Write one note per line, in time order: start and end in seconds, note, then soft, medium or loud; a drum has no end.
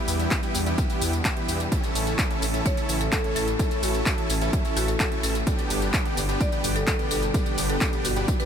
0.00 1.68 B2 medium
0.00 5.43 E3 medium
0.00 1.68 G3 medium
0.00 0.40 B3 medium
0.00 1.70 D4 medium
0.00 0.40 E4 medium
0.00 0.40 G4 loud
0.00 1.68 G4 medium
0.08 0.27 E2 loud
0.08 open hi-hat loud
0.08 tambourine medium
0.20 closed hi-hat medium
0.20 tambourine soft
0.31 kick loud
0.31 clap loud
0.31 closed hi-hat medium
0.31 tambourine soft
0.43 0.58 B3 medium
0.43 0.58 E4 medium
0.43 0.58 G4 medium
0.43 closed hi-hat soft
0.43 tambourine soft
0.55 0.74 E2 medium
0.55 open hi-hat medium
0.55 tambourine medium
0.66 0.87 B3 medium
0.66 0.87 E4 medium
0.66 0.87 G4 medium
0.66 closed hi-hat medium
0.66 tambourine soft
0.78 kick loud
0.78 closed hi-hat medium
0.78 tambourine soft
0.90 1.13 B3 loud
0.90 1.13 E4 medium
0.90 1.13 G4 loud
0.90 closed hi-hat soft
0.90 tambourine soft
1.02 1.20 E2 loud
1.02 open hi-hat loud
1.02 tambourine medium
1.13 closed hi-hat medium
1.13 tambourine soft
1.25 kick loud
1.25 clap loud
1.25 closed hi-hat medium
1.25 tambourine soft
1.37 1.60 B3 medium
1.37 1.60 E4 medium
1.37 1.60 G4 medium
1.37 closed hi-hat soft
1.48 1.67 E2 medium
1.48 open hi-hat medium
1.48 tambourine medium
1.60 closed hi-hat medium
1.60 tambourine soft
1.72 5.43 C#3 medium
1.72 5.43 A3 medium
1.72 2.28 C#4 medium
1.72 5.43 E4 medium
1.72 2.28 E4 medium
1.72 2.28 A4 loud
1.72 5.43 A4 medium
1.72 kick loud
1.72 closed hi-hat medium
1.72 tambourine soft
1.84 closed hi-hat soft
1.84 tambourine soft
1.95 2.14 A1 loud
1.95 open hi-hat loud
1.95 tambourine medium
2.07 closed hi-hat medium
2.07 tambourine soft
2.19 kick loud
2.19 clap loud
2.19 closed hi-hat medium
2.19 tambourine soft
2.30 2.45 C#4 medium
2.30 2.45 E4 medium
2.30 2.45 A4 medium
2.30 closed hi-hat soft
2.42 2.61 A1 medium
2.42 open hi-hat medium
2.42 tambourine medium
2.54 2.75 C#4 medium
2.54 2.75 E4 medium
2.54 2.75 A4 medium
2.54 closed hi-hat medium
2.54 tambourine soft
2.66 2.98 C#5 loud
2.66 kick loud
2.66 closed hi-hat medium
2.66 tambourine soft
2.77 3.01 C#4 loud
2.77 3.01 E4 medium
2.77 3.01 A4 loud
2.77 closed hi-hat soft
2.77 tambourine soft
2.89 3.08 A1 loud
2.89 open hi-hat loud
2.89 tambourine medium
3.01 3.08 A4 medium
3.01 closed hi-hat medium
3.01 tambourine soft
3.12 3.20 A4 medium
3.12 kick loud
3.12 clap loud
3.12 closed hi-hat medium
3.12 tambourine soft
3.24 3.48 C#4 medium
3.24 3.48 E4 medium
3.24 3.48 A4 medium
3.24 closed hi-hat soft
3.36 3.55 A1 medium
3.36 3.52 A4 medium
3.36 open hi-hat medium
3.36 tambourine medium
3.48 closed hi-hat medium
3.48 tambourine soft
3.59 4.15 C#4 medium
3.59 4.15 E4 medium
3.59 4.15 A4 loud
3.59 kick loud
3.59 closed hi-hat medium
3.59 tambourine soft
3.71 closed hi-hat soft
3.71 tambourine soft
3.83 4.02 A1 loud
3.83 3.98 F#4 medium
3.83 open hi-hat loud
3.83 tambourine medium
3.95 closed hi-hat medium
3.95 tambourine soft
4.06 kick loud
4.06 clap loud
4.06 closed hi-hat medium
4.06 tambourine soft
4.18 4.33 C#4 medium
4.18 4.33 E4 medium
4.18 4.33 A4 medium
4.18 closed hi-hat soft
4.30 4.49 A1 medium
4.30 open hi-hat loud
4.30 tambourine medium
4.41 4.62 C#4 medium
4.41 4.62 E4 medium
4.41 4.62 A4 medium
4.41 closed hi-hat medium
4.41 tambourine soft
4.53 kick loud
4.53 closed hi-hat medium
4.53 tambourine soft
4.65 4.88 C#4 medium
4.65 4.88 E4 medium
4.65 4.88 A4 loud
4.65 closed hi-hat soft
4.65 tambourine soft
4.77 4.95 A1 loud
4.77 4.86 F#4 loud
4.77 open hi-hat loud
4.77 tambourine medium
4.88 4.96 A4 medium
4.88 closed hi-hat medium
4.88 tambourine soft
5.00 kick loud
5.00 clap loud
5.00 closed hi-hat medium
5.00 tambourine soft
5.12 5.35 C#4 medium
5.12 5.35 E4 medium
5.12 5.35 A4 medium
5.12 closed hi-hat soft
5.23 5.42 A1 medium
5.23 5.52 A4 medium
5.23 open hi-hat loud
5.23 tambourine medium
5.35 closed hi-hat medium
5.35 tambourine soft
5.47 8.45 B2 medium
5.47 8.45 D3 medium
5.47 8.45 G3 medium
5.47 6.03 B3 medium
5.47 6.03 D4 medium
5.47 8.45 D4 medium
5.47 6.03 G4 loud
5.47 8.45 G4 loud
5.47 kick loud
5.47 closed hi-hat medium
5.47 tambourine soft
5.59 closed hi-hat soft
5.59 tambourine soft
5.70 5.89 G1 loud
5.70 open hi-hat loud
5.70 tambourine medium
5.82 closed hi-hat medium
5.82 tambourine soft
5.94 kick loud
5.94 clap loud
5.94 closed hi-hat medium
5.94 tambourine soft
6.05 6.20 B3 medium
6.05 6.20 D4 medium
6.05 6.20 G4 medium
6.05 closed hi-hat soft
6.17 6.36 G1 medium
6.17 open hi-hat loud
6.17 tambourine medium
6.29 6.50 B3 medium
6.29 6.50 D4 medium
6.29 6.50 G4 medium
6.29 closed hi-hat medium
6.29 tambourine soft
6.41 6.73 D5 medium
6.41 kick loud
6.41 closed hi-hat medium
6.41 tambourine soft
6.52 6.76 B3 loud
6.52 6.76 D4 medium
6.52 6.76 G4 loud
6.52 closed hi-hat soft
6.52 tambourine soft
6.64 6.83 G1 loud
6.64 open hi-hat loud
6.64 tambourine medium
6.76 6.83 A4 medium
6.76 closed hi-hat medium
6.76 tambourine soft
6.87 6.95 A4 medium
6.87 kick loud
6.87 clap loud
6.87 closed hi-hat medium
6.87 tambourine soft
6.99 7.23 B3 medium
6.99 7.23 D4 medium
6.99 7.23 G4 medium
6.99 closed hi-hat soft
7.11 7.30 G1 medium
7.11 7.26 A4 medium
7.11 open hi-hat loud
7.11 tambourine medium
7.23 closed hi-hat medium
7.23 tambourine soft
7.34 7.90 B3 medium
7.34 7.90 D4 medium
7.34 7.90 G4 loud
7.34 kick loud
7.34 closed hi-hat medium
7.34 tambourine soft
7.46 closed hi-hat soft
7.46 tambourine soft
7.58 7.77 G1 loud
7.58 open hi-hat loud
7.58 tambourine medium
7.70 7.85 A4 medium
7.70 closed hi-hat medium
7.70 tambourine soft
7.81 kick loud
7.81 clap loud
7.81 closed hi-hat medium
7.81 tambourine soft
7.93 8.08 B3 medium
7.93 8.08 D4 medium
7.93 8.08 G4 medium
7.93 closed hi-hat soft
7.93 tambourine soft
8.05 8.23 G1 loud
8.05 8.20 F#4 medium
8.05 open hi-hat loud
8.05 tambourine medium
8.16 8.37 B3 medium
8.16 8.37 D4 medium
8.16 8.37 G4 medium
8.16 closed hi-hat soft
8.16 tambourine soft
8.28 kick loud
8.28 closed hi-hat medium
8.28 tambourine soft
8.40 8.45 B3 loud
8.40 8.45 D4 medium
8.40 8.45 G4 loud
8.40 8.45 B4 medium
8.40 closed hi-hat soft
8.40 tambourine soft